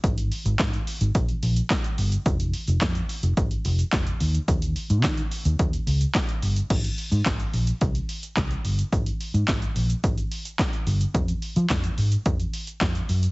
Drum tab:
CC |----------------|----------------|----------------|x---------------|
HH |xxoxxxoxxxoxxxox|xxoxxxoxxxoxxxox|xxoxxxoxxxoxxxox|xxoxxxoxxxoxxxox|
SH |xxxxxxxxxxxxxxxx|xxxxxxxxxxxxxxxx|xxxxxxxxxxxxxxxx|xxxxxxxxxxxxxxxx|
CP |----x-------x---|----x-------x---|----x-------x---|----x-------x---|
SD |----o-------o---|----o-------o---|----o-------o---|----o-------o---|
BD |o---o---o---o---|o---o---o---o---|o---o---o---o---|o---o---o---o---|

CC |----------------|----------------|
HH |xxoxxxoxxxoxxxox|xxoxxxoxxxoxxxox|
SH |xxxxxxxxxxxxxxxx|xxxxxxxxxxxxxxxx|
CP |----x-------x---|----x-------x---|
SD |----o-------o---|----o-------o---|
BD |o---o---o---o---|o---o---o---o---|